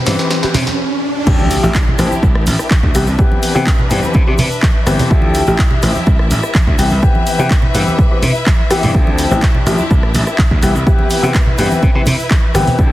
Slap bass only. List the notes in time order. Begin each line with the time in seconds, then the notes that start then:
0.07 G2
0.44 muted slap bass stroke
0.54 C3
1.27 D2
1.63 A1
1.99 A1
2.23 C2
2.35 A1
2.47 A1
2.83 D2
2.95 C2
3.07 C2
3.55 C3
3.91 G2
4.15 C3
4.27 C3
4.39 C3
4.86 G1
5.11 D2
5.47 A1
5.83 A1
6.07 C2
6.20 A1
6.31 A1
6.67 D2
6.78 C2
6.91 C2
7.39 C3
7.74 G2
8.11 muted slap bass stroke
8.22 C3
8.70 muted slap bass stroke
8.83 G2
8.95 D2
9.31 A1
9.66 A1
9.91 C2
10.03 A1
10.14 A1
10.51 D2
10.63 C2
10.75 C2
11.23 C3
11.58 G2
11.83 C3
11.95 C3
12.07 C3
12.54 G1
12.79 D2